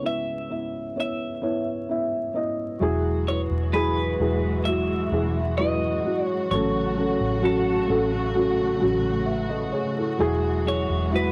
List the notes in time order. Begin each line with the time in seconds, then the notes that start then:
Already playing: C#2 C#3 B3 E4 C#5
0.02 B3 E4 B4
0.06 E5
0.50 B3 E4 E5
0.96 B3 E4 C#5
1.00 E5
1.42 B3 E4 C#5
1.89 B3 E4 E5
2.34 B3 E4 D#5
2.80 E1 E3 F#3 G#3 E4 F#4 G#4
3.27 F#3 E4 B4 C#5
3.50 E1
3.73 F#3 E4 G#4 B4
4.20 E1 F#3 E4 G#4
4.65 F#3 E4 F#4 E5
5.12 E1 F#3 E4 G#4
5.58 F#3 E4 B4 D#5
6.04 F#3 E4 F#4
6.26 C#5
6.49 A1 A2 C#3 F#3 A3 C#4 A4 C#5
6.96 F#3 C#4 A4
7.21 A1
7.42 F#3 C#4 F#4 A4
7.88 A1 F#3 C#4 A4
8.34 F#3 C#4 F#4
8.80 A1 F#3 C#4 F#4
9.26 B4 E5
9.49 A4 D#5
9.72 G#4 C#5
9.97 E4 A4
10.18 E1 E3 F#3 G#3 E4 G#4
10.65 F#3 E4 G#4 C#5
10.90 E1
11.11 F#3 E4 F#4
11.16 B4